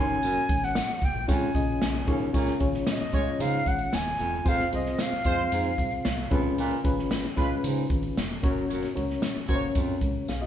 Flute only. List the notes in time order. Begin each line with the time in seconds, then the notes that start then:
Already playing: G#5
0.64 F#5
1.05 G5
1.31 G#5
2.89 D#5
3.41 F5
3.67 F#5
3.94 G#5
4.48 F5
4.74 D#5
5.01 F5